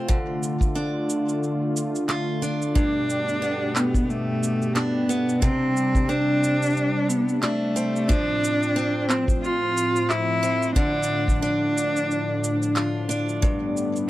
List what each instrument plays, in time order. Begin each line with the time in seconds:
Already playing: steel-string acoustic guitar F3 C4 F4, analog synth pad A3
0.08 steel-string acoustic guitar D3, analog synth pad D3 F4, kick, shaker
0.43 shaker
0.61 kick, shaker
0.75 steel-string acoustic guitar D4, shaker
1.10 shaker
1.29 shaker
1.43 shaker
1.76 shaker
1.95 shaker
2.09 steel-string acoustic guitar F4, clap, shaker
2.42 steel-string acoustic guitar D4, shaker
2.62 shaker
2.75 steel-string acoustic guitar G2, analog synth pad B2 G4, cello D4, kick, shaker
3.10 shaker
3.29 shaker
3.42 steel-string acoustic guitar B3, shaker
3.76 cello B3, clap, shaker
3.94 kick, shaker
4.10 cello A3, shaker
4.43 shaker
4.62 shaker
4.75 cello B3, steel-string acoustic guitar D4, clap, shaker
5.09 steel-string acoustic guitar B3, shaker
5.29 shaker
5.41 analog synth pad C3 G3 D4, steel-string acoustic guitar C3, cello C4, kick, shaker
5.77 shaker
5.95 kick, shaker
6.09 steel-string acoustic guitar C4, cello D4, shaker
6.43 shaker
6.62 shaker
6.65 shaker
6.70 shaker
6.72 shaker
6.74 shaker
6.77 shaker
7.09 cello B3, shaker
7.29 shaker
7.42 cello A3, steel-string acoustic guitar D4, clap, shaker
7.76 steel-string acoustic guitar C4, shaker
7.96 shaker
8.08 analog synth pad A2 F3 C4, steel-string acoustic guitar F3, cello D4, kick, shaker
8.44 shaker
8.63 shaker
8.76 steel-string acoustic guitar C4, shaker
9.09 cello C4, clap, shaker
9.28 kick, shaker
9.42 cello F4, shaker
9.77 shaker
9.96 shaker
10.10 cello E4, clap, shaker
10.43 steel-string acoustic guitar C4, shaker
10.62 shaker
10.75 steel-string acoustic guitar D3, cello D4, analog synth pad D4, kick, shaker
11.03 shaker
11.28 kick, shaker
11.42 steel-string acoustic guitar D4, cello D4, shaker
11.77 shaker
11.96 shaker
12.11 shaker
12.44 shaker
12.62 shaker
12.76 steel-string acoustic guitar F4, clap, shaker
13.09 steel-string acoustic guitar D4, shaker
13.29 shaker
13.42 steel-string acoustic guitar G2, analog synth pad G3 B3, kick, shaker
13.77 shaker
13.96 shaker